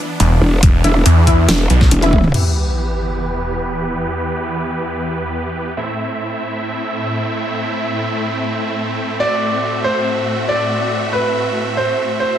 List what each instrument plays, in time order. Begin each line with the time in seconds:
Already playing: supersaw synth E3 B3 D4, synth stab E4 B4 E5
0.20 detuned saw bass E1, closed hi-hat
0.41 wobble bass E1
0.63 detuned saw bass E1, kick, closed hi-hat
0.84 wobble bass E1, synth stab E4 B4 E5, closed hi-hat
1.06 detuned saw bass E2, closed hi-hat
1.27 synth stab E4 B4 E5, kick, closed hi-hat
1.49 wobble bass E1, snare, closed hi-hat
1.70 detuned saw bass B1, closed hi-hat
1.81 kick, snare
1.91 wobble bass E1, closed hi-hat, high tom
2.02 synth stab E4 B4 E5, closed hi-hat, high tom
2.13 kick, mid tom
2.24 mid tom
2.34 supersaw synth E2 E3 B3 G4 B4, crash, sub drop
5.77 supersaw synth A2 A3 C4 E4 E5
9.20 supersaw synth A2 F#4 E5, grand piano D5
9.84 grand piano C5
10.49 grand piano D5
11.13 grand piano B4
11.77 grand piano C5
12.20 grand piano C5